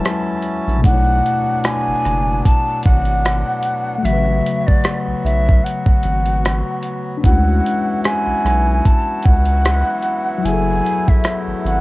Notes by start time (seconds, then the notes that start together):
Already playing: F#3 G#3 C#4 E4 B4 A5
0.05 cross-stick, closed hi-hat
0.42 closed hi-hat
0.67 A#1, closed hi-hat
0.78 B2
0.82 B1 F#3 A3 B3 D4 F#5, kick, closed hi-hat
0.89 E4 C#5
1.26 closed hi-hat
1.64 G#5, cross-stick, closed hi-hat
1.87 F#1
2.05 F#1, cross-stick, closed hi-hat
2.45 A5, kick, closed hi-hat
2.83 G#1 F#5, kick, closed hi-hat
3.05 closed hi-hat
3.25 cross-stick, closed hi-hat
3.63 closed hi-hat
3.98 A3
4.03 A1 F#3 B3 F#4 E5, closed hi-hat
4.08 C#3
4.13 B4
4.46 closed hi-hat
4.67 D5, kick
4.84 cross-stick, closed hi-hat
5.07 B1
5.24 B1 E5, closed hi-hat
5.49 kick
5.64 F#5, closed hi-hat
5.86 kick
6.03 G#1, closed hi-hat
6.26 closed hi-hat
6.45 cross-stick, closed hi-hat
6.83 closed hi-hat
7.17 C#4 D4
7.24 D2 E3 E4 F#4 F#5, kick, closed hi-hat
7.29 G#3 F#4
7.66 closed hi-hat
8.04 G#5, cross-stick, closed hi-hat
8.27 B1
8.44 B1, cross-stick, closed hi-hat
8.85 A5, kick, closed hi-hat
9.23 C#2 F#5, kick, closed hi-hat
9.46 closed hi-hat
9.65 cross-stick, closed hi-hat
10.03 closed hi-hat
10.38 F#3
10.43 F#1 F#3 A3 E4 G#5, closed hi-hat
10.48 G#4
10.53 A4
10.86 closed hi-hat
11.08 E5, kick
11.24 cross-stick, closed hi-hat
11.47 G#1
11.65 G#1 F#5, closed hi-hat